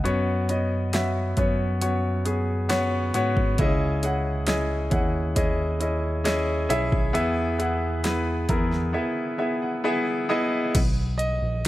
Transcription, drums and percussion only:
0.05 closed hi-hat
0.49 closed hi-hat
0.93 snare, closed hi-hat
1.37 kick, closed hi-hat
1.81 closed hi-hat
2.26 closed hi-hat
2.70 snare, closed hi-hat
3.14 closed hi-hat
3.37 kick
3.58 kick, closed hi-hat
4.03 closed hi-hat
4.47 snare, closed hi-hat
4.91 kick, closed hi-hat
5.36 kick, closed hi-hat
5.81 closed hi-hat
6.25 snare, closed hi-hat
6.70 closed hi-hat
6.92 kick
7.15 closed hi-hat
7.60 closed hi-hat
8.04 snare, closed hi-hat
8.49 kick, closed hi-hat
8.72 snare
10.75 kick, closed hi-hat, crash
11.19 closed hi-hat
11.65 closed hi-hat

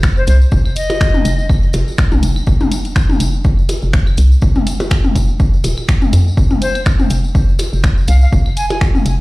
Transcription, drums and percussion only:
0.03 finger snap, kick, closed hi-hat, tambourine
0.17 tambourine
0.27 closed hi-hat, tambourine
0.42 tambourine
0.51 kick, tambourine
0.65 tambourine, claves
0.76 closed hi-hat, tambourine
0.90 closed hi-hat, tambourine, percussion blips
1.01 finger snap, kick, tambourine
1.14 mid tom, tambourine
1.25 closed hi-hat, tambourine
1.39 tambourine
1.49 kick, tambourine, claves
1.63 tambourine
1.73 closed hi-hat, tambourine, percussion blips
1.88 tambourine
1.98 finger snap, kick, closed hi-hat, tambourine
2.12 mid tom, tambourine
2.23 closed hi-hat, tambourine
2.36 tambourine, claves
2.46 kick, tambourine
2.60 mid tom, tambourine
2.71 closed hi-hat, tambourine
2.85 closed hi-hat, tambourine
2.96 finger snap, kick, tambourine
3.09 mid tom, tambourine
3.20 closed hi-hat, tambourine, claves
3.34 tambourine
3.44 kick, tambourine
3.59 tambourine
3.69 closed hi-hat, tambourine, percussion blips
3.82 tambourine
3.93 finger snap, kick, closed hi-hat, tambourine
4.07 tambourine, claves
4.17 closed hi-hat, tambourine
4.32 tambourine
4.42 kick, tambourine
4.55 mid tom, tambourine
4.67 closed hi-hat, tambourine
4.80 closed hi-hat, tambourine, percussion blips
4.90 finger snap, kick, tambourine, claves
5.04 mid tom, tambourine
5.15 kick, closed hi-hat, tambourine
5.29 tambourine
5.40 kick, tambourine
5.53 tambourine
5.64 closed hi-hat, tambourine, percussion blips
5.77 tambourine, claves
5.88 finger snap, kick, closed hi-hat, tambourine
6.02 mid tom, tambourine
6.13 closed hi-hat, tambourine
6.28 tambourine
6.37 kick, tambourine
6.50 mid tom, tambourine
6.62 closed hi-hat, tambourine
6.75 closed hi-hat, tambourine, claves
6.86 finger snap, kick, tambourine
6.99 mid tom, tambourine
7.10 closed hi-hat, tambourine
7.24 tambourine
7.35 kick, tambourine
7.49 tambourine
7.59 closed hi-hat, tambourine, percussion blips, claves
7.73 tambourine
7.83 finger snap, kick, closed hi-hat, tambourine
7.98 tambourine
8.08 closed hi-hat, tambourine
8.21 tambourine
8.32 kick, tambourine
8.46 tambourine, claves
8.57 closed hi-hat, tambourine
8.70 closed hi-hat, tambourine, percussion blips
8.81 finger snap, kick, tambourine
8.95 mid tom, tambourine
9.06 closed hi-hat, tambourine

